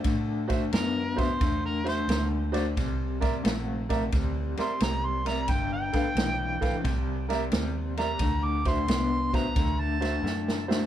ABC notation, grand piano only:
X:1
M:4/4
L:1/16
Q:"Swing" 1/4=88
K:Ddor
V:1 name="Grand piano"
z2 [^Fce] z3 [Fce] z3 [Fce] z3 [Fcd] z | z2 [_Bde] z3 [Bde] z3 [Bde] z3 [Bde] z | z2 [ABf] z3 [ABf] z3 [_Bde] z3 [Bde] z | z2 [^Fce] z3 [Fce] z3 [Fce] z3 [Fce] z |]